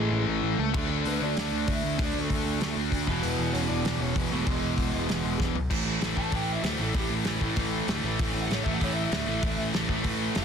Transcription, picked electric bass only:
0.00 0.10 A1 medium
0.11 0.25 A1 loud
0.27 0.41 A1 medium
0.43 0.57 A1 medium
0.58 0.72 C#2 medium
0.74 0.88 D2 loud
0.89 1.03 D2 medium
1.06 1.19 D2 loud
1.21 1.35 D2 medium
1.37 1.51 D2 medium
1.52 1.66 D2 medium
1.68 1.81 D2 medium
1.84 1.97 D2 medium
1.99 2.13 D2 loud
2.14 2.28 D2 medium
2.30 2.44 D2 medium
2.45 2.59 D2 medium
2.61 2.74 D2 loud
2.76 2.90 D2 medium
2.92 3.05 D2 medium
3.08 3.21 E1 medium
3.23 3.37 E1 loud
3.38 3.52 E1 medium
3.54 3.67 E1 medium
3.69 3.83 E1 medium
3.85 3.98 E1 loud
4.01 4.14 E1 medium
4.16 4.29 E1 medium
4.32 4.45 E1 loud
4.47 4.60 E1 loud
4.62 4.76 E1 loud
4.78 4.92 E1 medium
4.93 5.07 E1 medium
5.09 5.23 E1 loud
5.24 5.38 E1 loud
5.40 5.53 E1 loud
5.55 5.69 B1 loud
5.71 5.83 A1 loud
5.85 5.97 A1 medium
6.01 6.13 A1 medium
6.17 6.29 A1 medium
6.32 6.56 A1 loud
6.64 6.76 D2 medium
6.79 6.91 A1 medium
6.95 7.07 A1 loud
7.10 7.22 A1 medium
7.26 7.38 A1 medium
7.41 7.53 A1 medium
7.57 7.81 A1 medium
7.88 8.00 D2 medium
8.04 8.16 A1 medium
8.20 8.32 A1 loud
8.34 8.46 A1 medium
8.50 8.62 A1 medium
8.66 8.78 A1 medium
8.81 9.05 A1 loud
9.12 9.24 D2 medium
9.27 9.39 A1 medium
9.43 9.55 A1 loud
9.58 9.70 A1 medium
9.74 9.86 A1 medium
9.89 10.01 A1 medium
10.04 10.29 A1 medium
10.36 10.45 F1 loud

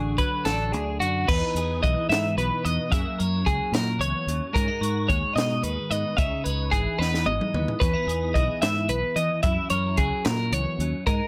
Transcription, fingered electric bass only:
0.00 0.17 A1 medium
0.45 0.74 A1 medium
0.74 0.99 D2 medium
1.01 1.27 F#2 medium
1.29 1.41 E2 medium
1.55 1.81 E2 medium
1.83 1.95 B1 medium
2.09 2.35 G#2 medium
2.37 2.50 B1 medium
2.65 2.77 E2 medium
2.92 3.05 F#2 medium
3.20 3.45 F#2 medium
3.47 3.59 C#2 loud
3.72 3.98 A#2 medium
3.99 4.13 C#2 medium
4.27 4.40 D#2 medium
4.56 4.68 G#2 medium
4.81 5.07 G#2 medium
5.09 5.22 D#2 loud
5.36 5.62 B2 medium
5.63 5.76 D#2 medium
5.91 6.03 G#2 medium
6.18 6.31 C#2 medium
6.46 6.71 C#2 medium
6.73 6.85 G#1 loud
6.99 7.25 E2 medium
7.26 7.39 G#1 medium
7.54 7.67 D#2 medium
7.82 7.94 E2 medium
8.07 8.33 E2 medium
8.35 8.48 B1 loud
8.63 8.88 G#2 medium
8.89 9.02 B1 medium
9.16 9.29 E3 medium
9.44 9.57 F#2 medium
9.71 9.97 F#2 medium
9.98 10.11 C#2 loud
10.26 10.51 A#2 medium
10.52 10.65 C#2 medium
10.79 10.92 D#2 medium
11.07 11.20 G#2 medium

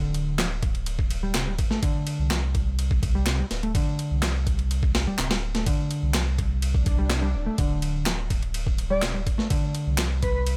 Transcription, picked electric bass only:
0.00 0.38 D3 medium
0.39 0.44 F3 medium
1.23 1.34 G3 medium
1.35 1.46 C3 medium
1.47 1.52 G3 medium
1.71 1.79 A3 medium
1.83 2.30 D3 medium
2.31 2.36 F3 medium
3.15 3.26 G3 medium
3.27 3.38 C3 medium
3.39 3.44 G3 medium
3.63 3.71 A3 medium
3.75 4.22 D3 medium
4.23 4.28 F3 medium
5.07 5.18 G3 medium
5.18 5.30 C3 medium
5.31 5.36 G3 medium
5.55 5.63 A3 medium
5.67 6.14 D3 medium
6.15 6.20 F3 medium
6.99 7.09 G3 medium
7.10 7.22 C3 medium
7.22 7.27 G3 medium
7.46 7.54 A3 medium
7.58 8.05 D3 medium
8.06 8.11 F3 medium
8.90 9.01 G3 medium
9.02 9.13 C3 medium
9.14 9.19 G3 medium
9.38 9.46 A3 medium
9.50 9.97 D3 medium
9.98 10.03 F3 medium

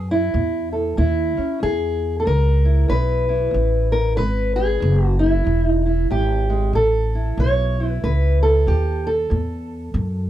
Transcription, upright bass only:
0.00 0.33 F#2 medium
0.34 0.96 E2 medium
0.98 1.35 D#2 medium
1.38 muted upright bass stroke soft
1.63 2.25 E2 medium
2.27 2.89 C#2 medium
2.90 3.52 B1 medium
3.54 4.16 A1 medium
4.18 4.80 G#1 medium
4.82 5.44 F#1 medium
5.46 6.08 E1 medium
6.10 6.72 G#1 medium
6.73 7.36 A1 medium
7.37 8.00 B1 medium
8.04 8.65 C#2 medium
8.67 9.29 D#2 medium
9.31 9.93 E2 medium
9.94 10.30 F#2 medium

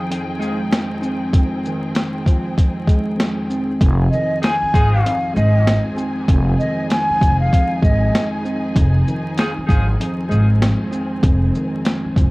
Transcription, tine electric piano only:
0.00 0.10 F2 loud
0.00 1.65 D#3 medium
0.00 2.26 F3 medium
0.10 0.70 F2 medium
0.39 2.86 G#3 medium
0.71 1.32 F2 medium
1.02 3.49 C4 medium
1.33 2.57 F2 loud
1.66 3.82 D#3 medium
2.27 3.81 F3 medium
2.58 3.16 F2 medium
2.87 3.80 G#3 medium
3.17 3.79 F2 medium
3.50 3.81 C4 medium
3.80 5.04 F2 loud
4.14 6.60 D#3 medium
4.74 7.21 F3 medium
5.05 5.65 F2 medium
5.34 7.81 G#3 medium
5.66 6.27 F2 medium
5.97 8.44 C4 loud
6.28 7.52 F2 loud
6.61 8.77 D#3 medium
7.22 8.76 F3 medium
7.53 8.11 F2 medium
7.82 8.75 G#3 medium
8.12 8.74 F2 medium
8.45 8.76 C4 medium
8.75 9.98 F2 loud
9.09 11.55 D#3 medium
9.69 12.16 F3 medium
10.00 10.60 F2 medium
10.29 12.30 G#3 medium
10.61 11.22 F2 medium
10.92 12.30 C4 medium
11.23 12.30 F2 loud
11.56 12.30 D#3 medium
12.17 12.30 F3 medium

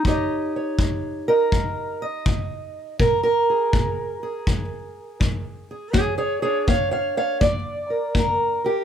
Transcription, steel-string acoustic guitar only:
0.05 0.74 D#3 medium
0.05 2.97 D#4 medium
0.05 2.97 G4 medium
0.05 0.55 C#5 soft
0.05 1.28 D#5 medium
0.56 1.28 C#5 soft
0.79 1.48 D#3 medium
1.28 2.01 A#4 loud
1.28 2.01 D#5 medium
1.52 2.21 D#3 medium
2.02 2.99 D#5 medium
2.26 2.95 D#3 medium
2.99 3.68 A#2 medium
2.99 3.22 A#4 medium
3.23 5.44 A#4 loud
3.50 4.22 G#4 soft
3.73 4.41 A#2 medium
4.23 5.70 G#4 medium
4.47 5.16 A#2 medium
5.20 5.89 A#2 medium
5.71 5.93 G#4 soft
5.93 6.62 A#3 medium
5.93 6.17 G#4 loud
5.93 6.17 C#5 loud
6.18 6.41 G#4 medium
6.18 6.41 C#5 medium
6.42 8.84 D4 soft
6.42 6.67 G#4 medium
6.42 6.66 C#5 medium
6.67 7.36 A#3 medium
6.67 6.90 C#5 medium
6.67 6.91 F5 loud
6.91 7.16 C#5 medium
6.91 7.17 F5 medium
7.17 7.41 C#5 medium
7.17 7.40 F5 medium
7.41 8.10 A#3 medium
7.41 8.15 D5 loud
7.90 8.15 A#4 soft
8.15 8.84 A#3 medium
8.15 8.63 A#4 medium
8.64 8.84 G4 medium
8.64 8.84 A#4 soft

